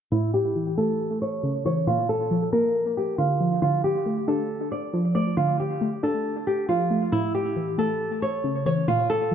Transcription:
0.12 1.21 A2 medium
0.12 0.31 E4 loud
0.34 0.75 G4 medium
0.56 1.64 E3 medium
0.78 1.87 A3 medium
0.78 1.19 A4 medium
1.22 1.63 C#5 medium
1.43 1.87 C#3 medium
1.65 1.87 E3 medium
1.65 1.85 C#5 medium
1.87 2.96 A#2 medium
1.87 2.07 F4 loud
2.09 2.50 A4 medium
2.31 3.39 F3 medium
2.53 3.62 A#3 loud
2.53 2.94 A#4 medium
2.97 3.16 G4 medium
3.18 3.61 D3 medium
3.18 3.59 F4 medium
3.40 3.62 F3 medium
3.62 4.72 D3 medium
3.62 3.82 F4 loud
3.84 4.25 G4 medium
4.06 5.14 A3 medium
4.28 5.37 D4 loud
4.28 4.69 A4 medium
4.72 5.13 D5 medium
4.94 6.03 F3 medium
5.15 5.80 A3 medium
5.15 5.35 D5 medium
5.37 6.47 D3 medium
5.37 5.57 F4 medium
5.60 6.01 G4 medium
5.81 6.89 A3 medium
6.03 7.13 D4 medium
6.03 6.44 A4 medium
6.47 6.66 G4 medium
6.69 7.13 F3 medium
6.69 7.10 F4 medium
6.91 7.12 A3 medium
7.12 8.22 A2 medium
7.12 7.32 E4 medium
7.34 7.76 G4 medium
7.56 8.64 E3 medium
7.78 8.88 A3 medium
7.78 8.20 A4 medium
8.22 8.63 C#5 medium
8.44 8.88 C#3 medium
8.66 8.88 E3 medium
8.66 8.86 C#5 medium
8.88 9.35 A#2 medium
8.88 9.07 F4 loud
9.10 9.35 A4 medium
9.31 9.35 F3 medium

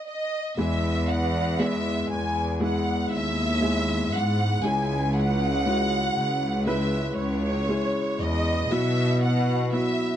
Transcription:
0.07 0.54 D#5 medium
0.56 2.05 E2 loud
0.56 2.06 E3 medium
0.56 1.54 G#3 medium
0.56 1.53 B3 medium
0.56 1.54 E4 medium
0.56 1.54 G#4 medium
0.56 1.08 E5 medium
1.08 1.59 F#5 medium
1.59 2.55 G#3 medium
1.59 2.56 B3 medium
1.59 2.56 E4 medium
1.59 2.56 G#4 medium
1.59 2.10 E5 medium
2.09 3.07 E2 medium
2.09 2.57 G#5 medium
2.60 3.57 G#3 medium
2.60 3.57 B3 medium
2.60 3.57 E4 medium
2.60 3.57 G#4 medium
2.60 3.09 F#5 medium
3.11 4.13 D#2 medium
3.11 4.14 E5 loud
3.61 4.58 G#3 medium
3.61 4.59 B3 medium
3.61 4.59 E4 medium
3.61 4.59 G#4 medium
4.12 4.60 G#2 medium
4.12 4.64 F#5 loud
4.63 6.12 C#2 loud
4.63 6.12 C#3 soft
4.63 5.60 G#3 medium
4.63 5.60 C#4 medium
4.63 5.60 E4 medium
4.63 5.60 G#4 medium
4.63 5.15 G#5 loud
5.15 6.67 F#5 loud
5.65 6.62 G#3 medium
5.65 6.62 C#4 medium
5.65 6.62 E4 medium
5.65 6.62 F#4 medium
6.16 7.14 C#2 loud
6.67 7.63 G#3 medium
6.67 7.64 C#4 medium
6.67 7.64 E4 medium
6.67 7.64 B4 medium
6.67 7.14 E5 medium
7.18 7.90 C#2 medium
7.18 8.20 C#5 loud
7.69 8.65 G#3 medium
7.69 8.65 C#4 medium
7.69 8.65 E4 medium
7.69 8.66 G#4 medium
8.19 8.66 E2 medium
8.19 8.71 D#5 loud
8.70 10.16 B2 loud
8.70 10.16 B2 medium
8.70 9.67 F#3 medium
8.70 9.67 B3 medium
8.70 9.67 E4 medium
8.70 9.67 F#4 medium
8.70 9.22 E5 loud
9.23 9.69 F#5 medium
9.71 10.16 F#3 medium
9.71 10.16 B3 medium
9.71 10.16 E4 medium
9.71 10.16 F#4 medium
9.71 10.16 E5 medium

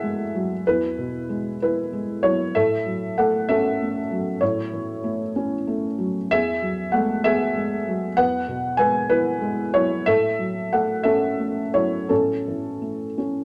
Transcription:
0.00 0.61 E2 medium
0.00 0.35 F#3 soft
0.00 0.02 G#3 soft
0.00 0.52 G#3 soft
0.00 0.66 A3 medium
0.00 0.21 E4 soft
0.00 0.66 G#4 medium
0.00 0.66 E5 medium
0.00 0.67 F#5 medium
0.35 0.84 F#3 soft
0.67 2.52 E2 medium
0.67 1.57 E4 medium
0.67 1.60 B4 medium
0.98 1.47 B2 soft
1.29 1.79 G#3 soft
1.62 2.21 E4 medium
1.62 2.24 B4 medium
1.93 2.43 G#3 soft
2.23 2.55 F#3 soft
2.23 2.53 E4 medium
2.23 2.54 C#5 medium
2.55 4.38 A2 medium
2.55 3.14 A4 medium
2.55 3.17 E5 medium
2.86 3.36 F#3 soft
3.18 3.68 A3 soft
3.18 3.47 A4 medium
3.18 3.48 F#5 medium
3.49 3.98 C#4 soft
3.49 4.38 A4 medium
3.49 4.41 E5 medium
3.82 4.30 A3 soft
4.11 4.60 F#3 soft
4.41 6.26 A2 medium
4.41 5.31 E4 medium
4.41 5.34 C#5 medium
4.73 5.23 E3 soft
5.04 5.54 A3 soft
5.36 5.86 C#4 soft
5.67 6.17 A3 medium
5.98 6.30 F#3 soft
6.31 8.16 E2 medium
6.31 6.90 G#4 medium
6.31 6.94 E5 loud
6.62 7.12 F#3 soft
6.92 7.44 G#3 soft
6.92 7.22 A3 medium
6.92 7.24 F#5 medium
7.24 7.75 B3 soft
7.24 8.15 G#4 medium
7.24 8.19 E5 loud
7.56 8.06 G#3 medium
7.88 8.37 F#3 soft
8.17 10.01 E2 medium
8.17 8.76 B4 medium
8.17 8.79 F#5 loud
8.48 8.98 B2 soft
8.77 9.29 G#3 soft
8.77 9.08 B4 medium
8.77 9.10 G#5 medium
9.10 9.61 B3 soft
9.10 9.70 E4 medium
9.10 9.73 B4 medium
9.41 9.93 G#3 soft
9.74 10.06 F#3 soft
9.74 10.04 E4 medium
9.74 10.06 C#5 medium
10.06 12.06 A2 medium
10.06 10.68 A4 medium
10.06 10.72 E5 loud
10.39 10.92 F#3 soft
10.73 11.26 A3 soft
10.73 11.04 A4 medium
10.73 11.06 F#5 medium
11.03 11.60 C#4 soft
11.03 11.70 A4 medium
11.03 11.73 E5 medium
11.39 11.96 A3 soft
11.74 12.32 F#3 soft
11.74 12.08 E4 medium
11.74 12.10 C#5 medium
12.09 13.44 A2 soft
12.09 13.15 C#4 soft
12.09 13.18 A4 medium
12.48 13.05 E3 soft
12.82 13.39 A3 soft
13.18 13.44 C#4 soft

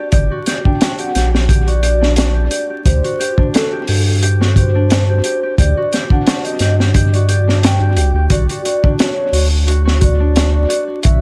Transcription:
0.00 0.65 D4 medium
0.00 0.12 G4 medium
0.11 0.29 G1 loud
0.11 0.37 G4 medium
0.11 0.59 D5 medium
0.11 kick loud
0.11 closed hi-hat medium
0.31 0.53 F#4 medium
0.46 0.87 G4 medium
0.46 snare soft
0.46 closed hi-hat medium
0.65 2.01 D4 loud
0.65 0.96 G5 medium
0.65 kick medium
0.81 1.05 F#4 medium
0.81 snare loud
0.81 closed hi-hat medium
0.99 1.14 G4 medium
0.99 1.30 F#5 medium
0.99 closed hi-hat soft
1.15 2.49 A#1 medium
1.15 1.33 G4 medium
1.15 snare soft
1.15 closed hi-hat medium
1.33 1.48 G4 medium
1.33 snare soft
1.49 1.73 G4 loud
1.49 kick loud
1.49 closed hi-hat medium
1.67 1.88 F#4 medium
1.67 2.12 D5 medium
1.67 closed hi-hat soft
1.82 2.22 G4 medium
1.82 closed hi-hat medium
2.01 3.38 D4 medium
2.01 snare soft
2.16 2.41 F#4 medium
2.16 2.79 D5 loud
2.16 snare loud
2.16 closed hi-hat medium
2.35 2.50 G4 medium
2.51 2.70 G4 medium
2.51 closed hi-hat medium
2.70 2.85 G4 medium
2.85 3.02 D2 loud
2.85 3.10 G4 medium
2.85 3.48 C5 loud
2.85 kick loud
2.85 closed hi-hat medium
3.04 3.26 F#4 medium
3.04 closed hi-hat soft
3.20 3.60 G4 loud
3.20 closed hi-hat medium
3.38 4.75 D4 medium
3.38 kick medium
3.54 3.79 F#4 medium
3.54 4.01 A4 loud
3.54 snare loud
3.54 closed hi-hat medium
3.73 3.88 G4 medium
3.88 5.22 G2 medium
3.88 4.06 G4 medium
3.88 open hi-hat medium
4.06 4.22 G4 medium
4.23 4.47 G4 medium
4.23 closed hi-hat medium
4.41 4.63 F#4 medium
4.41 snare soft
4.56 4.97 G4 medium
4.56 5.04 C5 medium
4.56 kick medium
4.56 closed hi-hat medium
4.75 6.11 D4 loud
4.90 5.15 F#4 medium
4.90 snare loud
4.90 closed hi-hat medium
5.09 5.24 G4 medium
5.09 5.54 C5 loud
5.24 5.43 G4 medium
5.24 closed hi-hat medium
5.43 5.58 G4 medium
5.58 5.75 D2 loud
5.58 5.83 G4 medium
5.58 6.06 D5 loud
5.58 kick medium
5.58 closed hi-hat medium
5.77 5.99 F#4 loud
5.93 6.33 G4 medium
5.93 snare soft
5.93 closed hi-hat medium
6.10 7.47 D4 medium
6.10 6.42 F#5 medium
6.10 kick medium
6.27 6.52 F#4 medium
6.27 snare loud
6.27 closed hi-hat medium
6.45 6.61 G4 medium
6.45 6.75 D#5 medium
6.45 closed hi-hat soft
6.59 7.80 G2 medium
6.59 6.79 G4 medium
6.59 snare soft
6.59 closed hi-hat medium
6.80 6.95 G4 medium
6.80 snare soft
6.94 7.20 G4 loud
6.94 kick medium
6.94 closed hi-hat medium
7.12 7.35 F#4 medium
7.12 7.58 D5 medium
7.12 closed hi-hat soft
7.29 7.69 G4 medium
7.29 closed hi-hat medium
7.47 8.83 D4 medium
7.47 snare soft
7.62 7.87 F#4 medium
7.62 8.25 G5 medium
7.62 snare loud
7.62 closed hi-hat medium
7.80 7.97 G2 medium
7.80 7.96 G4 medium
7.96 8.13 C2 medium
7.96 8.15 G4 medium
7.96 closed hi-hat medium
8.14 8.28 D2 medium
8.14 8.37 G4 medium
8.30 8.47 B1 loud
8.30 8.49 F#4 medium
8.30 8.93 D5 loud
8.30 kick loud
8.30 closed hi-hat medium
8.49 8.65 F#4 medium
8.49 closed hi-hat soft
8.65 8.99 F#4 medium
8.65 closed hi-hat medium
8.83 10.19 D4 loud
8.83 kick medium
8.99 9.17 F#4 medium
8.99 9.47 C#5 loud
8.99 snare loud
8.99 closed hi-hat medium
9.17 9.33 F#4 medium
9.32 10.66 D2 medium
9.32 9.51 F#4 medium
9.32 open hi-hat medium
9.67 9.85 F#4 medium
9.67 closed hi-hat medium
9.85 10.00 F#4 medium
9.85 snare soft
10.01 10.35 F#4 medium
10.01 10.49 D5 loud
10.01 kick medium
10.01 closed hi-hat medium
10.20 11.21 D4 loud
10.35 10.53 F#4 medium
10.35 snare loud
10.35 closed hi-hat medium
10.54 10.68 F#4 medium
10.54 11.00 D5 medium
10.69 10.87 F#4 loud
10.69 closed hi-hat medium
10.87 11.02 F#4 medium
11.03 11.21 B1 loud
11.03 11.21 F#4 medium
11.03 11.21 E5 loud
11.03 kick loud
11.03 closed hi-hat medium

